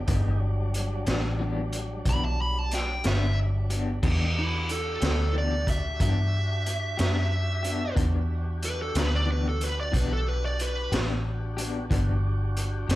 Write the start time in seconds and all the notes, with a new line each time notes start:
0.06 G1 E3 G#3 B3 D4 D#4 G4, kick, closed hi-hat
0.40 F#3 G3 D4
0.74 closed hi-hat
1.06 A1 B3 D4 G4, snare, closed hi-hat
1.39 E3 B3 D4 G4
1.72 closed hi-hat
2.05 B1 E3 B3 D4 G4, kick, closed hi-hat
2.09 B5
2.25 A5
2.42 B5
2.59 A5
2.71 G5, snare, closed hi-hat
3.04 G1 B3 D4 G4 E5, snare, closed hi-hat
3.70 B3 D4 G4, closed hi-hat
4.03 E2 E3 G#3 B3 D4 D#4 G4, kick, crash
4.34 D4 F#4 G4
4.39 E4
4.69 A4, closed hi-hat
5.00 D2 B3 D4 G4, snare, closed hi-hat
5.33 E3 B3 D4 G4
5.38 D5
5.67 E5, kick, closed hi-hat
6.00 G2 E3 B3 D4 G4 E5, kick, closed hi-hat
6.66 closed hi-hat
6.97 F#2 B3 D4 G4, snare, closed hi-hat
7.63 B3 D4 G4, closed hi-hat
7.96 E2 E3 B3 D4 F#4 G4, kick, closed hi-hat
8.62 B4, closed hi-hat
8.82 A4
8.94 D2 B3 D4 G4 B4, snare, closed hi-hat
9.16 D5
9.25 E3 B3 D4 G4
9.32 B4
9.49 A4
9.61 B4, closed hi-hat
9.80 D5
9.92 B1 E3 B3 D4 G4, kick, closed hi-hat
9.96 B4
10.13 A4
10.28 B4
10.45 D5
10.59 B4, closed hi-hat
10.92 A1 B3 D4 G4, snare, closed hi-hat
11.57 B3 D4 G4, closed hi-hat
11.90 G1 E3 B3 D4 F#4 G4, kick, closed hi-hat
12.56 closed hi-hat
12.88 F#1 B3 D4 G4, snare, closed hi-hat